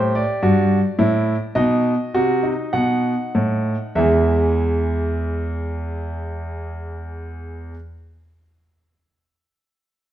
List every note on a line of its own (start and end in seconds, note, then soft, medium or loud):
0.00 0.22 A2 medium
0.00 0.41 G4 medium
0.00 0.15 C5 medium
0.15 1.53 D5 medium
0.42 0.78 G2 medium
0.42 0.78 F#4 medium
0.99 1.35 A2 medium
0.99 1.35 E4 medium
1.55 1.92 B2 medium
1.55 1.92 D#4 medium
1.55 2.70 D#5 medium
2.14 2.52 C3 medium
2.14 2.44 F#4 medium
2.43 3.93 D#4 medium
2.73 3.12 B2 medium
2.73 3.93 F#5 medium
3.35 3.74 A2 medium
3.95 7.71 E2 medium
3.95 7.74 E3 medium
3.95 7.75 G#3 medium
3.95 7.72 G#4 medium
3.95 7.71 E5 medium